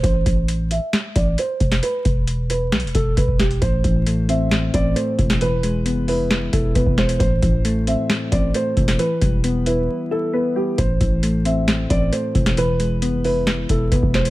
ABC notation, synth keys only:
X:1
M:4/4
L:1/8
Q:1/4=134
K:Am
V:1 name="Synth keys"
z8 | z8 | A,, E, A, C2 C A, E, | E, ^G, B, E2 E B, G, |
A,, E, A, C2 C A, E, | E, G, B, E2 E B, G, | A,, E, A, C2 C A, E, | E, ^G, B, E2 E B, G, |]